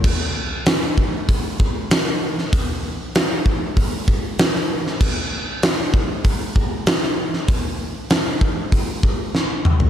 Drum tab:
CC |x---------------|----------------|x---------------|----------------|
HH |----o---o---o---|o---o---o---o---|----o---o---o---|o---o---o-------|
SD |----o-------o--o|----o-------oo-o|----o-------oo-o|----o-------o---|
T2 |----------------|----------------|----------------|--------------o-|
FT |----------------|----------------|----------------|---------------o|
BD |o-----o-o-o-----|o-----o-o-o-----|o-----o-o-o-----|o-----o-o-o-----|